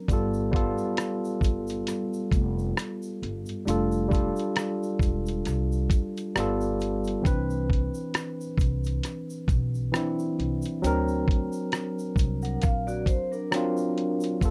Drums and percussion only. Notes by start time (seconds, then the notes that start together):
0.08 kick, closed hi-hat, shaker
0.34 shaker
0.53 kick, closed hi-hat
0.78 shaker
0.97 cross-stick, closed hi-hat, shaker
1.25 shaker
1.41 kick, closed hi-hat, shaker
1.67 closed hi-hat, shaker
1.87 cross-stick, closed hi-hat, shaker
2.13 shaker
2.32 kick, closed hi-hat, shaker
2.59 shaker
2.77 cross-stick, closed hi-hat, shaker
3.02 shaker
3.23 closed hi-hat
3.46 closed hi-hat, shaker
3.68 closed hi-hat, shaker
3.92 shaker
4.11 kick, closed hi-hat, shaker
4.36 closed hi-hat, shaker
4.56 cross-stick, closed hi-hat, shaker
4.83 shaker
4.99 kick, closed hi-hat, shaker
5.26 closed hi-hat, shaker
5.45 cross-stick, closed hi-hat, shaker
5.72 shaker
5.90 kick, closed hi-hat, shaker
6.17 closed hi-hat, shaker
6.36 cross-stick, closed hi-hat, shaker
6.61 shaker
6.80 closed hi-hat, shaker
7.04 closed hi-hat, shaker
7.25 kick, closed hi-hat, shaker
7.50 shaker
7.70 kick, closed hi-hat
7.94 shaker
8.14 cross-stick, closed hi-hat, shaker
8.41 shaker
8.58 kick, closed hi-hat, shaker
8.84 closed hi-hat, shaker
9.03 cross-stick, closed hi-hat, shaker
9.30 shaker
9.48 kick, closed hi-hat, shaker
9.75 shaker
9.94 cross-stick, closed hi-hat, shaker
10.19 shaker
10.40 closed hi-hat
10.62 closed hi-hat, shaker
10.84 closed hi-hat, shaker
11.08 shaker
11.28 kick, closed hi-hat
11.52 shaker
11.72 cross-stick, closed hi-hat, shaker
11.99 shaker
12.16 kick, closed hi-hat, shaker
12.42 closed hi-hat, shaker
12.62 kick, cross-stick, closed hi-hat, shaker
12.88 shaker
13.06 kick, closed hi-hat, shaker
13.33 shaker
13.52 cross-stick, closed hi-hat, shaker
13.77 shaker
13.98 closed hi-hat
14.20 closed hi-hat, shaker
14.41 kick, closed hi-hat, shaker